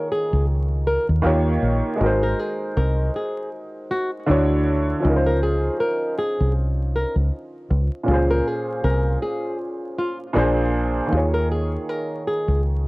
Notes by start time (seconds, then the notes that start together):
Already playing: D#3 A#3 F4 G#4 C#5
0.12 G#4
0.33 C#2
0.87 A#4
1.09 D#2
1.22 D#2 D#3 A#3 F4 G4
1.26 C#5
1.62 A#1
1.96 G#3 D#4
2.00 G#1 F#4 A#4
2.06 C5
2.23 A#4
2.39 G#4
2.77 C2 A#4
3.16 G#4
3.91 F#4
4.26 D2 D3 D4 E4 F#4
4.31 C#5
4.99 F3 C#4
5.05 C#2 D#4 F4
5.09 A#4
5.16 C5
5.26 A#4
5.43 G#4
5.80 A#4
6.18 G#4
6.40 C2
6.96 A#4
7.16 C#2
7.70 C#2
8.04 A#2 C#4
8.08 C#2 F4 G#4
8.13 C5
8.30 A#4
8.47 G#4
8.84 C2 A#4
9.22 G#4
9.99 F4
10.33 A#1 A#2 A#3 D4 G#4
10.38 C5
11.07 D#3 A#3
11.12 D#2 F4 G#4
11.17 C#5
11.34 A#4
11.52 G#4
11.89 A#4
12.27 G#4
12.48 C#2